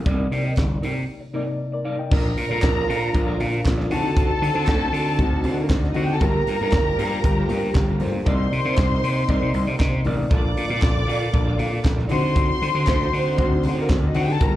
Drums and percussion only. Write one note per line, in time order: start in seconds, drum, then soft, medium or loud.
0.06 kick loud
0.06 closed hi-hat medium
0.06 muted conga medium
0.32 open hi-hat medium
0.56 kick loud
0.56 snare loud
0.56 closed hi-hat medium
0.56 high conga medium
0.83 open hi-hat medium
2.11 kick loud
2.11 crash loud
2.11 muted conga medium
2.37 open hi-hat medium
2.62 kick loud
2.62 snare loud
2.62 clap loud
2.62 closed hi-hat medium
2.62 high conga medium
2.90 open hi-hat medium
3.14 kick loud
3.14 closed hi-hat medium
3.14 muted conga soft
3.40 open hi-hat medium
3.40 muted conga medium
3.65 kick loud
3.65 snare loud
3.65 clap loud
3.65 closed hi-hat medium
3.65 high conga medium
3.80 snare soft
3.91 open hi-hat medium
3.91 high conga medium
4.17 kick loud
4.17 closed hi-hat medium
4.17 muted conga medium
4.44 open hi-hat medium
4.67 kick loud
4.67 snare loud
4.67 clap loud
4.67 closed hi-hat medium
4.67 high conga medium
4.94 open hi-hat medium
5.19 kick loud
5.19 closed hi-hat medium
5.19 muted conga soft
5.44 open hi-hat medium
5.44 muted conga medium
5.69 kick loud
5.69 snare loud
5.69 clap loud
5.69 closed hi-hat medium
5.69 high conga medium
5.84 snare soft
5.94 open hi-hat medium
5.94 high conga medium
6.21 kick loud
6.21 closed hi-hat medium
6.21 muted conga medium
6.47 open hi-hat medium
6.71 kick loud
6.71 snare loud
6.71 clap loud
6.71 closed hi-hat medium
6.71 high conga medium
6.99 open hi-hat medium
7.24 kick loud
7.24 closed hi-hat medium
7.24 muted conga soft
7.49 open hi-hat medium
7.49 muted conga medium
7.74 kick loud
7.74 snare loud
7.74 clap loud
7.74 closed hi-hat medium
7.74 high conga medium
8.00 open hi-hat medium
8.00 high conga medium
8.26 kick loud
8.26 closed hi-hat medium
8.26 muted conga medium
8.53 open hi-hat medium
8.77 kick loud
8.77 snare loud
8.77 clap loud
8.77 closed hi-hat medium
8.77 high conga medium
9.04 open hi-hat medium
9.29 kick loud
9.29 closed hi-hat medium
9.54 open hi-hat medium
9.54 muted conga medium
9.79 kick loud
9.79 snare loud
9.79 clap loud
9.79 closed hi-hat medium
9.79 high conga medium
10.04 open hi-hat medium
10.04 high conga medium
10.31 kick loud
10.31 closed hi-hat medium
10.31 muted conga medium
10.57 open hi-hat medium
10.81 kick loud
10.81 snare loud
10.81 clap loud
10.81 closed hi-hat medium
10.81 high conga medium
11.09 open hi-hat medium
11.34 kick loud
11.34 closed hi-hat medium
11.59 open hi-hat medium
11.59 muted conga medium
11.85 kick loud
11.85 snare loud
11.85 clap loud
11.85 closed hi-hat medium
11.85 high conga medium
11.99 snare soft
12.09 open hi-hat medium
12.09 high conga medium
12.36 kick loud
12.36 closed hi-hat medium
12.36 muted conga medium
12.62 open hi-hat medium
12.86 kick loud
12.86 snare loud
12.86 clap loud
12.86 closed hi-hat medium
12.86 high conga medium
13.14 open hi-hat medium
13.38 kick loud
13.38 closed hi-hat medium
13.38 muted conga soft
13.63 open hi-hat medium
13.63 muted conga medium
13.89 kick loud
13.89 snare loud
13.89 clap loud
13.89 closed hi-hat medium
13.89 high conga medium
14.14 open hi-hat medium
14.14 high conga medium
14.41 kick loud
14.41 closed hi-hat medium
14.41 muted conga medium